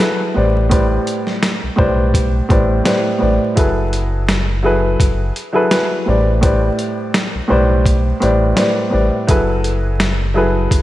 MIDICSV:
0, 0, Header, 1, 4, 480
1, 0, Start_track
1, 0, Tempo, 714286
1, 482, Time_signature, 4, 2, 24, 8
1, 7272, End_track
2, 0, Start_track
2, 0, Title_t, "Upright piano"
2, 0, Program_c, 0, 0
2, 0, Note_on_c, 0, 54, 72
2, 0, Note_on_c, 0, 64, 65
2, 0, Note_on_c, 0, 68, 67
2, 3, Note_on_c, 0, 69, 65
2, 9, Note_on_c, 0, 71, 82
2, 218, Note_off_c, 0, 54, 0
2, 220, Note_off_c, 0, 64, 0
2, 223, Note_off_c, 0, 68, 0
2, 225, Note_off_c, 0, 69, 0
2, 228, Note_off_c, 0, 71, 0
2, 231, Note_on_c, 0, 45, 72
2, 236, Note_on_c, 0, 55, 70
2, 240, Note_on_c, 0, 71, 67
2, 246, Note_on_c, 0, 72, 67
2, 251, Note_on_c, 0, 74, 88
2, 456, Note_off_c, 0, 45, 0
2, 461, Note_off_c, 0, 55, 0
2, 464, Note_off_c, 0, 71, 0
2, 466, Note_off_c, 0, 72, 0
2, 467, Note_on_c, 0, 45, 91
2, 469, Note_off_c, 0, 74, 0
2, 472, Note_on_c, 0, 55, 88
2, 477, Note_on_c, 0, 71, 83
2, 481, Note_on_c, 0, 72, 85
2, 487, Note_on_c, 0, 74, 97
2, 1033, Note_off_c, 0, 45, 0
2, 1035, Note_off_c, 0, 55, 0
2, 1038, Note_off_c, 0, 71, 0
2, 1040, Note_off_c, 0, 72, 0
2, 1043, Note_off_c, 0, 74, 0
2, 1184, Note_on_c, 0, 45, 91
2, 1188, Note_on_c, 0, 55, 89
2, 1193, Note_on_c, 0, 71, 80
2, 1198, Note_on_c, 0, 72, 95
2, 1204, Note_on_c, 0, 74, 97
2, 1638, Note_off_c, 0, 45, 0
2, 1640, Note_off_c, 0, 55, 0
2, 1642, Note_off_c, 0, 71, 0
2, 1645, Note_off_c, 0, 72, 0
2, 1648, Note_off_c, 0, 74, 0
2, 1672, Note_on_c, 0, 45, 95
2, 1677, Note_on_c, 0, 55, 90
2, 1682, Note_on_c, 0, 71, 77
2, 1686, Note_on_c, 0, 72, 77
2, 1691, Note_on_c, 0, 74, 90
2, 1898, Note_off_c, 0, 45, 0
2, 1902, Note_off_c, 0, 55, 0
2, 1904, Note_off_c, 0, 71, 0
2, 1906, Note_off_c, 0, 72, 0
2, 1909, Note_off_c, 0, 74, 0
2, 1909, Note_on_c, 0, 45, 78
2, 1913, Note_on_c, 0, 55, 67
2, 1919, Note_on_c, 0, 71, 68
2, 1924, Note_on_c, 0, 72, 67
2, 1928, Note_on_c, 0, 74, 77
2, 2131, Note_off_c, 0, 45, 0
2, 2135, Note_off_c, 0, 55, 0
2, 2140, Note_off_c, 0, 71, 0
2, 2141, Note_on_c, 0, 45, 77
2, 2145, Note_off_c, 0, 72, 0
2, 2145, Note_on_c, 0, 55, 67
2, 2147, Note_off_c, 0, 74, 0
2, 2150, Note_on_c, 0, 71, 65
2, 2155, Note_on_c, 0, 72, 62
2, 2160, Note_on_c, 0, 74, 82
2, 2374, Note_off_c, 0, 45, 0
2, 2376, Note_off_c, 0, 55, 0
2, 2378, Note_off_c, 0, 71, 0
2, 2381, Note_off_c, 0, 72, 0
2, 2383, Note_off_c, 0, 74, 0
2, 2389, Note_on_c, 0, 54, 93
2, 2394, Note_on_c, 0, 64, 87
2, 2399, Note_on_c, 0, 68, 84
2, 2405, Note_on_c, 0, 69, 86
2, 2410, Note_on_c, 0, 71, 97
2, 2954, Note_off_c, 0, 54, 0
2, 2956, Note_off_c, 0, 64, 0
2, 2959, Note_off_c, 0, 68, 0
2, 2962, Note_off_c, 0, 69, 0
2, 2964, Note_off_c, 0, 71, 0
2, 3109, Note_on_c, 0, 54, 88
2, 3115, Note_on_c, 0, 64, 78
2, 3119, Note_on_c, 0, 68, 88
2, 3124, Note_on_c, 0, 69, 78
2, 3128, Note_on_c, 0, 71, 103
2, 3560, Note_off_c, 0, 54, 0
2, 3563, Note_off_c, 0, 64, 0
2, 3565, Note_off_c, 0, 68, 0
2, 3568, Note_off_c, 0, 69, 0
2, 3570, Note_off_c, 0, 71, 0
2, 3714, Note_on_c, 0, 54, 90
2, 3719, Note_on_c, 0, 64, 86
2, 3723, Note_on_c, 0, 68, 86
2, 3728, Note_on_c, 0, 69, 89
2, 3733, Note_on_c, 0, 71, 106
2, 3818, Note_off_c, 0, 54, 0
2, 3822, Note_off_c, 0, 64, 0
2, 3827, Note_off_c, 0, 68, 0
2, 3828, Note_on_c, 0, 54, 71
2, 3832, Note_off_c, 0, 69, 0
2, 3832, Note_on_c, 0, 64, 66
2, 3836, Note_off_c, 0, 71, 0
2, 3837, Note_on_c, 0, 68, 66
2, 3842, Note_on_c, 0, 69, 63
2, 3846, Note_on_c, 0, 71, 82
2, 4057, Note_off_c, 0, 54, 0
2, 4059, Note_off_c, 0, 64, 0
2, 4062, Note_off_c, 0, 68, 0
2, 4064, Note_off_c, 0, 69, 0
2, 4066, Note_off_c, 0, 71, 0
2, 4070, Note_on_c, 0, 45, 71
2, 4075, Note_on_c, 0, 55, 67
2, 4080, Note_on_c, 0, 71, 69
2, 4085, Note_on_c, 0, 72, 66
2, 4091, Note_on_c, 0, 74, 87
2, 4298, Note_off_c, 0, 45, 0
2, 4301, Note_off_c, 0, 55, 0
2, 4303, Note_off_c, 0, 71, 0
2, 4306, Note_off_c, 0, 72, 0
2, 4309, Note_off_c, 0, 74, 0
2, 4309, Note_on_c, 0, 45, 91
2, 4314, Note_on_c, 0, 55, 86
2, 4318, Note_on_c, 0, 71, 81
2, 4323, Note_on_c, 0, 72, 84
2, 4328, Note_on_c, 0, 74, 96
2, 4874, Note_off_c, 0, 45, 0
2, 4876, Note_off_c, 0, 55, 0
2, 4878, Note_off_c, 0, 71, 0
2, 4881, Note_off_c, 0, 72, 0
2, 4883, Note_off_c, 0, 74, 0
2, 5025, Note_on_c, 0, 45, 89
2, 5029, Note_on_c, 0, 55, 91
2, 5035, Note_on_c, 0, 71, 81
2, 5041, Note_on_c, 0, 72, 95
2, 5045, Note_on_c, 0, 74, 99
2, 5479, Note_off_c, 0, 45, 0
2, 5481, Note_off_c, 0, 55, 0
2, 5483, Note_off_c, 0, 71, 0
2, 5486, Note_off_c, 0, 72, 0
2, 5488, Note_off_c, 0, 74, 0
2, 5512, Note_on_c, 0, 45, 95
2, 5517, Note_on_c, 0, 55, 88
2, 5522, Note_on_c, 0, 71, 77
2, 5527, Note_on_c, 0, 72, 84
2, 5532, Note_on_c, 0, 74, 93
2, 5739, Note_off_c, 0, 45, 0
2, 5742, Note_off_c, 0, 55, 0
2, 5744, Note_off_c, 0, 71, 0
2, 5747, Note_off_c, 0, 72, 0
2, 5749, Note_off_c, 0, 74, 0
2, 5749, Note_on_c, 0, 45, 77
2, 5755, Note_on_c, 0, 55, 64
2, 5759, Note_on_c, 0, 71, 70
2, 5763, Note_on_c, 0, 72, 66
2, 5768, Note_on_c, 0, 74, 80
2, 5973, Note_off_c, 0, 45, 0
2, 5978, Note_off_c, 0, 55, 0
2, 5983, Note_off_c, 0, 71, 0
2, 5983, Note_on_c, 0, 45, 75
2, 5985, Note_off_c, 0, 72, 0
2, 5987, Note_off_c, 0, 74, 0
2, 5988, Note_on_c, 0, 55, 69
2, 5993, Note_on_c, 0, 71, 67
2, 5996, Note_on_c, 0, 72, 60
2, 6003, Note_on_c, 0, 74, 85
2, 6215, Note_off_c, 0, 45, 0
2, 6217, Note_off_c, 0, 55, 0
2, 6220, Note_off_c, 0, 71, 0
2, 6222, Note_off_c, 0, 72, 0
2, 6225, Note_off_c, 0, 74, 0
2, 6232, Note_on_c, 0, 54, 99
2, 6235, Note_on_c, 0, 64, 87
2, 6241, Note_on_c, 0, 68, 84
2, 6245, Note_on_c, 0, 69, 88
2, 6250, Note_on_c, 0, 71, 105
2, 6795, Note_off_c, 0, 54, 0
2, 6797, Note_off_c, 0, 64, 0
2, 6800, Note_off_c, 0, 68, 0
2, 6802, Note_off_c, 0, 69, 0
2, 6804, Note_off_c, 0, 71, 0
2, 6949, Note_on_c, 0, 54, 87
2, 6954, Note_on_c, 0, 64, 82
2, 6959, Note_on_c, 0, 68, 89
2, 6963, Note_on_c, 0, 69, 80
2, 6969, Note_on_c, 0, 71, 102
2, 7272, Note_off_c, 0, 54, 0
2, 7272, Note_off_c, 0, 64, 0
2, 7272, Note_off_c, 0, 68, 0
2, 7272, Note_off_c, 0, 69, 0
2, 7272, Note_off_c, 0, 71, 0
2, 7272, End_track
3, 0, Start_track
3, 0, Title_t, "Sub bass"
3, 0, Program_c, 1, 38
3, 247, Note_on_c, 1, 33, 96
3, 664, Note_off_c, 1, 33, 0
3, 1098, Note_on_c, 1, 35, 48
3, 1141, Note_off_c, 1, 35, 0
3, 1203, Note_on_c, 1, 35, 89
3, 1622, Note_off_c, 1, 35, 0
3, 1683, Note_on_c, 1, 33, 87
3, 1892, Note_off_c, 1, 33, 0
3, 2167, Note_on_c, 1, 33, 91
3, 2279, Note_off_c, 1, 33, 0
3, 2405, Note_on_c, 1, 30, 103
3, 3336, Note_off_c, 1, 30, 0
3, 3362, Note_on_c, 1, 30, 101
3, 3571, Note_off_c, 1, 30, 0
3, 4086, Note_on_c, 1, 33, 103
3, 4504, Note_off_c, 1, 33, 0
3, 4938, Note_on_c, 1, 35, 50
3, 4980, Note_off_c, 1, 35, 0
3, 5047, Note_on_c, 1, 35, 92
3, 5464, Note_off_c, 1, 35, 0
3, 5528, Note_on_c, 1, 33, 85
3, 5735, Note_off_c, 1, 33, 0
3, 6008, Note_on_c, 1, 33, 94
3, 6119, Note_off_c, 1, 33, 0
3, 6245, Note_on_c, 1, 30, 102
3, 7176, Note_off_c, 1, 30, 0
3, 7202, Note_on_c, 1, 30, 98
3, 7272, Note_off_c, 1, 30, 0
3, 7272, End_track
4, 0, Start_track
4, 0, Title_t, "Drums"
4, 0, Note_on_c, 9, 42, 79
4, 64, Note_off_c, 9, 42, 0
4, 479, Note_on_c, 9, 42, 91
4, 481, Note_on_c, 9, 36, 121
4, 546, Note_off_c, 9, 42, 0
4, 548, Note_off_c, 9, 36, 0
4, 720, Note_on_c, 9, 42, 56
4, 787, Note_off_c, 9, 42, 0
4, 853, Note_on_c, 9, 38, 38
4, 920, Note_off_c, 9, 38, 0
4, 958, Note_on_c, 9, 38, 112
4, 960, Note_on_c, 9, 42, 67
4, 1026, Note_off_c, 9, 38, 0
4, 1027, Note_off_c, 9, 42, 0
4, 1200, Note_on_c, 9, 36, 96
4, 1267, Note_off_c, 9, 36, 0
4, 1438, Note_on_c, 9, 36, 97
4, 1443, Note_on_c, 9, 42, 100
4, 1506, Note_off_c, 9, 36, 0
4, 1510, Note_off_c, 9, 42, 0
4, 1681, Note_on_c, 9, 36, 101
4, 1682, Note_on_c, 9, 42, 46
4, 1748, Note_off_c, 9, 36, 0
4, 1750, Note_off_c, 9, 42, 0
4, 1918, Note_on_c, 9, 38, 120
4, 1919, Note_on_c, 9, 42, 79
4, 1985, Note_off_c, 9, 38, 0
4, 1986, Note_off_c, 9, 42, 0
4, 2400, Note_on_c, 9, 42, 93
4, 2402, Note_on_c, 9, 36, 122
4, 2467, Note_off_c, 9, 42, 0
4, 2469, Note_off_c, 9, 36, 0
4, 2640, Note_on_c, 9, 42, 56
4, 2708, Note_off_c, 9, 42, 0
4, 2879, Note_on_c, 9, 38, 111
4, 2881, Note_on_c, 9, 42, 66
4, 2947, Note_off_c, 9, 38, 0
4, 2948, Note_off_c, 9, 42, 0
4, 3359, Note_on_c, 9, 36, 93
4, 3363, Note_on_c, 9, 42, 101
4, 3426, Note_off_c, 9, 36, 0
4, 3430, Note_off_c, 9, 42, 0
4, 3603, Note_on_c, 9, 42, 46
4, 3670, Note_off_c, 9, 42, 0
4, 3838, Note_on_c, 9, 38, 113
4, 3839, Note_on_c, 9, 42, 78
4, 3905, Note_off_c, 9, 38, 0
4, 3906, Note_off_c, 9, 42, 0
4, 4319, Note_on_c, 9, 42, 89
4, 4322, Note_on_c, 9, 36, 120
4, 4386, Note_off_c, 9, 42, 0
4, 4389, Note_off_c, 9, 36, 0
4, 4561, Note_on_c, 9, 42, 56
4, 4628, Note_off_c, 9, 42, 0
4, 4800, Note_on_c, 9, 38, 117
4, 4801, Note_on_c, 9, 42, 67
4, 4867, Note_off_c, 9, 38, 0
4, 4869, Note_off_c, 9, 42, 0
4, 5279, Note_on_c, 9, 36, 98
4, 5283, Note_on_c, 9, 42, 99
4, 5346, Note_off_c, 9, 36, 0
4, 5351, Note_off_c, 9, 42, 0
4, 5523, Note_on_c, 9, 42, 45
4, 5590, Note_off_c, 9, 42, 0
4, 5757, Note_on_c, 9, 38, 116
4, 5758, Note_on_c, 9, 42, 79
4, 5824, Note_off_c, 9, 38, 0
4, 5825, Note_off_c, 9, 42, 0
4, 6240, Note_on_c, 9, 42, 89
4, 6242, Note_on_c, 9, 36, 122
4, 6307, Note_off_c, 9, 42, 0
4, 6309, Note_off_c, 9, 36, 0
4, 6480, Note_on_c, 9, 42, 56
4, 6547, Note_off_c, 9, 42, 0
4, 6719, Note_on_c, 9, 38, 113
4, 6721, Note_on_c, 9, 42, 68
4, 6786, Note_off_c, 9, 38, 0
4, 6788, Note_off_c, 9, 42, 0
4, 7198, Note_on_c, 9, 36, 93
4, 7203, Note_on_c, 9, 42, 99
4, 7266, Note_off_c, 9, 36, 0
4, 7270, Note_off_c, 9, 42, 0
4, 7272, End_track
0, 0, End_of_file